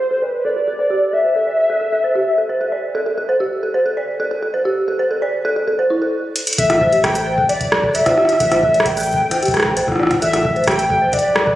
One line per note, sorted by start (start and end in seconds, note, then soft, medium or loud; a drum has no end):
0.00 0.24 C5 medium
0.11 0.20 A4 medium
0.22 0.44 B4 medium
0.22 0.33 D5 medium
0.45 0.50 A4 medium
0.45 1.15 D5 loud
0.56 0.65 A4 medium
0.68 0.78 A4 medium
0.79 0.90 C5 medium
0.90 1.01 G4 medium
1.13 1.22 A4 medium
1.13 2.72 E5 loud
1.24 1.33 C5 medium
1.36 1.45 A4 medium
1.47 1.58 D5 medium
1.70 1.75 A4 medium
1.81 1.90 A4 medium
1.93 2.03 A4 medium
2.04 2.15 C5 medium
2.15 2.26 G4 medium
2.38 2.47 A4 medium
2.49 2.58 C5 medium
2.61 2.70 A4 medium
2.72 2.83 D5 medium
2.95 3.00 A4 medium
3.06 3.15 A4 medium
3.18 3.28 A4 medium
3.29 3.40 C5 medium
3.40 3.51 G4 medium
3.63 3.72 A4 medium
3.74 3.83 C5 medium
3.86 3.95 A4 medium
3.97 4.08 D5 medium
4.20 4.25 A4 medium
4.31 4.40 A4 medium
4.43 4.53 A4 medium
4.54 4.65 C5 medium
4.65 4.76 G4 medium
4.88 4.97 A4 medium
4.99 5.08 C5 medium
5.11 5.20 A4 medium
5.22 5.33 D5 medium
5.45 5.50 A4 medium
5.56 5.65 A4 medium
5.67 5.78 A4 medium
5.79 5.90 C5 medium
5.90 5.96 E4 medium
6.02 6.11 A4 medium
6.36 closed hi-hat medium
6.47 closed hi-hat medium
6.53 closed hi-hat medium
6.58 7.43 A1 loud
6.58 6.68 A4 medium
6.58 7.01 E5 loud
6.58 kick loud
6.58 closed hi-hat medium
6.70 6.81 A4 medium
6.70 cross-stick medium
6.70 closed hi-hat medium
6.81 6.92 C5 medium
6.81 kick loud
6.93 7.03 G4 medium
6.93 closed hi-hat soft
7.04 7.46 G5 loud
7.04 kick loud
7.04 cross-stick loud
7.04 closed hi-hat medium
7.15 7.24 A4 medium
7.15 closed hi-hat medium
7.15 shaker medium
7.27 7.36 C5 medium
7.38 7.47 A4 medium
7.38 kick loud
7.49 7.96 D5 loud
7.49 7.60 D5 medium
7.49 closed hi-hat medium
7.61 kick loud
7.61 closed hi-hat medium
7.72 7.96 E1 medium
7.72 7.78 A4 loud
7.72 cross-stick loud
7.83 7.93 A4 medium
7.83 kick loud
7.95 8.02 G1 medium
7.95 8.06 A4 medium
7.95 8.40 E5 loud
7.95 closed hi-hat medium
8.06 8.17 C5 medium
8.06 kick loud
8.06 cross-stick medium
8.06 closed hi-hat medium
8.17 8.28 G4 medium
8.17 cross-stick medium
8.25 cross-stick soft
8.25 closed hi-hat soft
8.33 cross-stick soft
8.40 9.25 A1 loud
8.40 8.49 A4 medium
8.40 8.87 E5 loud
8.40 kick loud
8.40 closed hi-hat medium
8.52 8.61 C5 medium
8.52 cross-stick medium
8.52 closed hi-hat medium
8.63 8.72 A4 medium
8.63 kick loud
8.74 8.85 D5 medium
8.74 closed hi-hat soft
8.80 cross-stick loud
8.86 9.77 G5 loud
8.86 kick loud
8.86 closed hi-hat medium
8.97 9.03 A4 loud
8.97 closed hi-hat medium
8.97 shaker medium
9.00 shaker medium
9.03 shaker soft
9.06 shaker soft
9.08 9.18 A4 medium
9.08 shaker soft
9.11 kick loud
9.11 shaker soft
9.14 shaker soft
9.20 9.31 A4 medium
9.31 9.42 C5 medium
9.31 cross-stick soft
9.31 closed hi-hat medium
9.43 9.53 G4 medium
9.43 closed hi-hat medium
9.45 kick loud
9.45 closed hi-hat soft
9.48 closed hi-hat soft
9.51 9.61 E1 loud
9.51 cross-stick medium
9.51 closed hi-hat soft
9.54 cross-stick medium
9.54 closed hi-hat soft
9.60 cross-stick medium
9.60 closed hi-hat soft
9.63 9.73 A1 medium
9.63 9.74 A4 medium
9.63 kick loud
9.63 cross-stick loud
9.77 10.16 A1 medium
9.77 9.86 C5 medium
9.77 closed hi-hat medium
9.88 9.97 A4 medium
9.88 kick loud
9.88 cross-stick soft
9.92 cross-stick soft
9.96 cross-stick medium
9.99 10.10 D5 medium
9.99 cross-stick medium
10.03 cross-stick medium
10.07 kick loud
10.07 cross-stick medium
10.11 cross-stick medium
10.11 closed hi-hat soft
10.22 11.07 A1 loud
10.22 10.28 A4 loud
10.22 10.64 E5 loud
10.22 closed hi-hat medium
10.33 10.43 A4 medium
10.33 cross-stick medium
10.33 closed hi-hat medium
10.45 10.56 A4 medium
10.45 kick loud
10.56 10.67 C5 medium
10.56 closed hi-hat soft
10.64 11.15 G5 loud
10.64 kick loud
10.64 cross-stick loud
10.64 closed hi-hat soft
10.68 10.78 G4 medium
10.68 closed hi-hat medium
10.71 closed hi-hat soft
10.79 closed hi-hat medium
10.90 10.99 A4 medium
10.90 kick loud
11.02 11.11 C5 medium
11.13 11.22 A4 medium
11.13 11.55 D5 loud
11.13 kick loud
11.13 closed hi-hat medium
11.19 closed hi-hat medium
11.24 11.35 D5 medium
11.36 11.55 E1 medium
11.36 cross-stick loud
11.47 11.53 A4 loud
11.47 kick loud